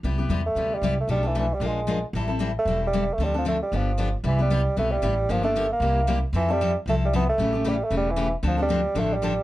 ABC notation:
X:1
M:4/4
L:1/8
Q:"Swing" 1/4=229
K:Am
V:1 name="Steel-string acoustic guitar"
[C,G,B,EG] [B,EG] [C,G,B,EG] z [C,G,B,EG] z [C,G,B,EG] z | [B,,F,A,DA] [A,DA] [B,,F,A,DA] z [F,_A,DF_B] z [F,A,DFB] z | [E,G,CEA] [CEA] [E,G,CEA] z [E,G,CEA] z [E,G,CEA] z | [D,F,CDA] [CDA] [D,F,CDA] z [D,F,B,DG] z [D,F,B,DG] z |
[K:C] [C,G,B,EG] [B,EG] [C,G,B,EG] z [C,G,B,EG] z [C,G,B,EG] z | [D,F,_B,DG] [B,DG] [D,F,B,DG] z [C,G,B,EG] z [C,G,B,EG] z | [F,CEA] [CEA] [F,CEA] z [F,CEA] z [F,CEA] z | [^C,E,A,^CG] [A,CG] [C,E,A,CG] z [C,E,A,CG] z [C,E,A,CG] z |
[D,F,CDA] [CDA] [D,F,CDA] z [D,F,CDA] z [D,F,CDA] z |]
V:2 name="Bassoon" clef=bass
z3 A,2 G,2 A, | G, E, E, G, _A,3 z | z3 A,2 G,2 A, | G, F, A, G, F,3 z |
[K:C] E, G,3 A, G,3 | F, A,2 _B,4 z | E, G,2 z A, G, B, A,- | A,2 G, A, G, E,2 z |
F, G,3 A, G,3 |]
V:3 name="Upright bass" clef=bass
C,,2 E,,2 D,,2 C,,2 | B,,,4 _B,,,4 | A,,,4 E,,,4 | D,,4 G,,,4 |
[K:C] C,,4 B,,,2 A,,,2 | G,,,4 C,,4 | F,,4 C,,4 | A,,,4 E,,,4 |
D,,4 A,,,4 |]